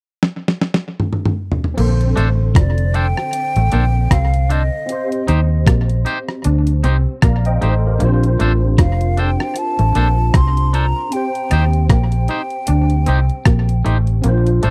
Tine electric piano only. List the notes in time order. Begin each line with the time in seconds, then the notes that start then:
1.74 D3 C4
1.78 A4 C5
4.86 C4
4.90 G4 C5
7.23 D5 F5 A#5
7.46 C5 D#5 G5
7.63 A4 C5
7.86 G4 A#4
7.98 C4 D4
8.03 F4 C5
11.10 C4 G4
11.16 C5
14.21 C4 F4
14.27 D4 C5